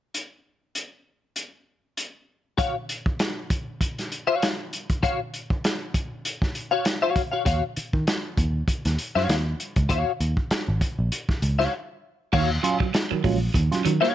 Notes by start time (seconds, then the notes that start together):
0.14 closed hi-hat
0.75 closed hi-hat
1.36 closed hi-hat
1.97 closed hi-hat
2.58 F#4 C#5 F5, kick, closed hi-hat
2.89 closed hi-hat
3.06 kick
3.19 snare, closed hi-hat
3.50 kick, closed hi-hat
3.81 kick, closed hi-hat
3.98 snare, closed hi-hat
4.12 closed hi-hat
4.27 F#4 C#5 F5
4.42 snare, closed hi-hat
4.73 closed hi-hat
4.90 kick, closed hi-hat
5.03 F#4 C#5 F5, kick, closed hi-hat
5.34 closed hi-hat
5.50 kick
5.64 snare, closed hi-hat
5.94 kick, closed hi-hat
6.25 closed hi-hat
6.42 kick, snare
6.55 closed hi-hat
6.71 F#4 C#5 F5
6.85 snare, closed hi-hat
7.02 F#4 C#5 F5
7.16 kick, closed hi-hat
7.32 F#4 C#5 F5
7.45 D#2 F#4 C#5 F5, kick, closed hi-hat
7.76 muted picked electric bass stroke, closed hi-hat
7.93 D#3, kick
8.07 snare, closed hi-hat
8.37 D#2, kick, closed hi-hat
8.68 kick, closed hi-hat
8.85 D#2, snare, closed hi-hat
8.98 closed hi-hat
9.15 F#2 F#4 C#5 F5, snare
9.29 D#2, snare, closed hi-hat
9.60 closed hi-hat
9.76 C#2, kick, closed hi-hat
9.89 D#2 F#4 C#5 F5, kick, closed hi-hat
10.21 D#2, closed hi-hat
10.37 kick
10.51 muted picked electric bass stroke, snare, closed hi-hat
10.68 G#1
10.81 kick, closed hi-hat
10.99 A#1
11.12 closed hi-hat
11.29 kick, snare
11.42 C#2, closed hi-hat
11.59 F#4 C#5 F5, snare
12.33 D#2 D#3 F#4 C#5 F5, kick, crash
12.63 F#3 C#4 F4, muted clean electric guitar stroke, closed hi-hat
12.80 F#3 C#4 F4, muted picked electric bass stroke, kick
12.94 C#4 F4, muted clean electric guitar stroke, snare, closed hi-hat
13.11 D#3 F#3, muted picked electric bass stroke
13.24 A#1 F#3 G#3 C#4 F4, kick, open hi-hat
13.54 D#2 D#3, muted clean electric guitar stroke, kick, closed hi-hat
13.71 F#3 C#4 F4, snare, closed hi-hat
13.85 D#3 F#3 C#4 F4, closed hi-hat
14.01 A#3 F#4 C#5 F5, snare